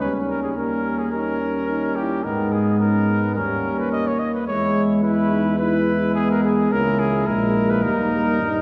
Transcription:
0.00 2.25 D#2 soft
0.00 0.57 G3 soft
0.00 0.59 C#4 soft
0.00 0.57 C#4 soft
0.00 0.13 B4 medium
0.29 0.43 A#4 medium
0.43 0.50 G#4 soft
0.57 1.12 G3 soft
0.57 1.13 A#3 soft
0.57 1.12 C#4 soft
0.57 1.00 A#4 medium
0.99 1.12 G#4 soft
1.12 2.26 G3 soft
1.12 2.26 C#4 soft
1.12 1.41 D#4 soft
1.12 1.98 A#4 medium
1.41 1.69 C#4 soft
1.69 1.99 D#4 soft
1.96 2.24 E4 soft
1.96 2.25 G4 medium
2.24 3.38 G#2 soft
2.24 3.38 G#3 soft
2.24 3.38 B3 soft
2.24 2.79 D#4 soft
2.24 2.54 A#4 medium
2.53 2.80 G#4 medium
2.80 3.08 C#4 soft
2.80 3.35 A#4 medium
3.09 3.36 B3 soft
3.35 4.20 D#2 soft
3.35 4.20 G3 soft
3.35 4.49 A#3 soft
3.35 4.20 C#4 soft
3.35 3.77 A#4 medium
3.80 3.91 B4 medium
3.92 4.09 D#5 medium
4.07 4.21 C#5 medium
4.19 4.33 D#5 medium
4.35 4.47 B4 medium
4.47 6.68 E2 soft
4.47 5.05 G#3 soft
4.47 4.99 G#3 soft
4.47 5.00 E4 soft
4.47 4.83 C#5 medium
5.03 5.58 G#3 soft
5.03 5.58 E4 medium
5.03 5.32 E4 medium
5.03 5.55 B4 medium
5.31 5.58 D#4 medium
5.59 6.70 G#3 medium
5.59 5.95 E4 medium
5.59 6.69 E4 medium
5.59 6.14 B4 medium
6.15 6.73 B3 medium
6.15 6.29 G#4 medium
6.31 6.44 A#4 medium
6.44 6.74 G#4 medium
6.71 7.24 C#2 medium
6.71 7.24 A#3 medium
6.71 7.26 C#4 medium
6.71 7.85 E4 medium
6.71 7.01 A#4 medium
6.99 7.28 G#4 medium
7.27 7.86 A#1 medium
7.27 7.86 G#3 medium
7.27 8.38 A#3 medium
7.27 7.72 A#4 medium
7.70 7.85 B4 medium
7.83 8.42 D#2 medium
7.83 8.12 G3 medium
7.83 8.62 D#4 medium
7.83 8.62 A#4 medium
8.13 8.62 G3 medium
8.41 8.62 G2 medium
8.41 8.62 D#4 medium

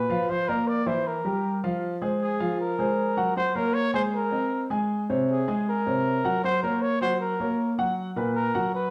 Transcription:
0.00 0.31 B4 medium
0.10 0.25 F3 medium
0.10 0.25 F4 medium
0.10 0.26 F5 medium
0.29 0.45 F3 medium
0.29 0.45 F4 medium
0.29 0.50 C5 loud
0.29 0.45 F5 medium
0.49 0.80 A#3 medium
0.49 0.69 A#4 medium
0.49 0.80 A#4 medium
0.49 0.80 D5 medium
0.68 0.88 D5 loud
0.86 1.18 E3 medium
0.86 1.18 E4 medium
0.86 1.09 C5 medium
0.86 1.18 E5 medium
1.07 1.64 A#4 medium
1.25 1.56 G3 medium
1.25 1.56 G4 medium
1.25 1.57 A#4 medium
1.64 1.95 F3 medium
1.64 1.95 F4 medium
1.64 1.95 F5 medium
2.02 2.33 G#3 medium
2.02 2.33 G#4 medium
2.02 2.33 C5 medium
2.21 2.56 G#4 medium
2.40 2.71 F3 medium
2.40 2.72 F4 medium
2.40 2.72 F5 medium
2.60 3.32 A#4 medium
2.78 3.10 G#3 medium
2.78 3.10 G#4 medium
2.78 3.10 C5 medium
3.17 3.32 F#3 medium
3.17 3.33 F#4 medium
3.17 3.33 F#5 medium
3.36 3.52 F#3 medium
3.36 3.52 F#4 medium
3.36 3.57 C5 loud
3.36 3.52 F#5 medium
3.55 3.87 A#3 medium
3.55 3.87 A#4 medium
3.55 3.76 A#4 medium
3.55 3.87 C#5 medium
3.74 3.93 C#5 loud
3.94 4.25 G#3 medium
3.94 4.25 G#4 medium
3.94 4.03 C5 medium
3.94 4.25 G#5 medium
4.15 4.67 A#4 medium
4.31 4.63 C4 medium
4.31 4.63 C5 medium
4.31 4.63 D#5 medium
4.70 5.02 G#3 medium
4.70 5.02 G#4 medium
4.70 5.02 G#5 medium
5.10 5.41 C3 medium
5.10 5.41 C5 medium
5.10 5.41 C#5 medium
5.31 5.65 G#4 medium
5.48 5.79 G#3 medium
5.48 5.79 G#4 medium
5.48 5.79 G#5 medium
5.69 6.40 A#4 medium
5.87 6.18 C3 medium
5.87 6.18 C5 medium
5.87 6.18 C#5 medium
6.25 6.40 F#3 medium
6.25 6.40 F#4 medium
6.25 6.40 F#5 medium
6.44 6.59 F#3 medium
6.44 6.60 F#4 medium
6.44 6.61 C5 loud
6.44 6.60 F#5 medium
6.62 6.94 A#3 medium
6.62 6.83 A#4 medium
6.62 6.94 A#4 medium
6.62 6.95 C#5 medium
6.82 7.00 C#5 medium
7.01 7.32 F#3 medium
7.01 7.33 F#4 medium
7.01 7.19 C5 loud
7.01 7.33 F#5 medium
7.20 7.74 A#4 medium
7.40 7.71 A#3 medium
7.40 7.71 A#4 medium
7.40 7.71 C#5 medium
7.78 8.09 F#3 medium
7.78 8.09 F#4 medium
7.78 8.10 F#5 loud
8.16 8.47 A#2 medium
8.16 8.48 A#4 medium
8.16 8.48 B4 medium
8.35 8.71 A#4 medium
8.55 8.86 F#3 medium
8.55 8.86 F#4 medium
8.55 8.86 F#5 medium
8.75 8.90 B4 medium

